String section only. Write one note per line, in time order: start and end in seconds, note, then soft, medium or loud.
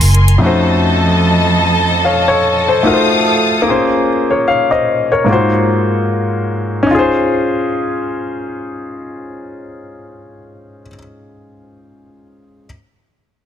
0.00 0.39 A#4 medium
0.00 0.38 G#5 medium
0.00 0.39 C6 medium
0.42 2.83 F3 medium
0.42 2.83 A4 medium
0.42 2.83 D#5 medium
0.42 2.83 A5 medium
2.85 3.66 A4 medium
2.85 3.66 F5 medium
2.85 3.65 D#6 medium